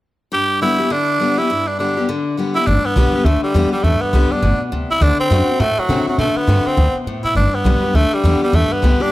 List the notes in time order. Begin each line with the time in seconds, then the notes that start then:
0.32 G2 G4
0.61 D3 G3 B3 E4 G4
0.79 B3 G4
0.90 D3 D4
1.20 D3 G3 B3 G4
1.38 B3 E4 G4
1.50 G2
1.67 D4
1.79 D3 G3 B3 D4 G4
1.97 B3 G4
2.09 D3
2.37 D3 G3 B3 G4
2.56 B3 E4 G4
2.67 G1 G2 D4
2.85 B3, muted upright bass stroke
2.96 B1 D3 G3 B3 G4
3.14 B3 G4, muted upright bass stroke
3.24 D2 D3 A3
3.43 G3, muted upright bass stroke
3.54 E2 D3 G3 B3 G4
3.73 G3 B3 G4, muted upright bass stroke
3.83 E2 G2 A3
4.02 B3, muted upright bass stroke
4.13 C2 D3 G3 B3 G4
4.31 B3 D4 G4, muted upright bass stroke
4.42 G1 B2
4.60 muted upright bass stroke
4.72 D2 C3
4.90 C2 E4
5.01 D2 D3 D4
5.20 C4, muted upright bass stroke
5.30 F#2 D3 A3 C4 F#4
5.48 C4 F#4, muted upright bass stroke
5.60 A2 A3
5.78 F#3, muted upright bass stroke
5.89 C3 D3 A3 C4 F#4
6.07 F#3 C4 F#4, muted upright bass stroke
6.18 B2 D3 A3
6.36 B3, muted upright bass stroke
6.47 G2 D3 A3 C4 F#4
6.66 C4, muted upright bass stroke
6.77 D2 B2
6.95 muted upright bass stroke
7.06 A2
7.24 B2 E4
7.35 G1 G2 D4
7.54 B3, muted upright bass stroke
7.64 B1 D3 G3 B3 G4
7.83 B3 G4, muted upright bass stroke
7.94 D2 D3 A3
8.12 G3, muted upright bass stroke
8.24 E2 D3 G3 B3 G4
8.42 G3 B3 G4, muted upright bass stroke
8.53 E2 G2 A3
8.72 B3, muted upright bass stroke
8.82 C2 D3 G3 B3 G4
9.00 B3 D4 G4, muted upright bass stroke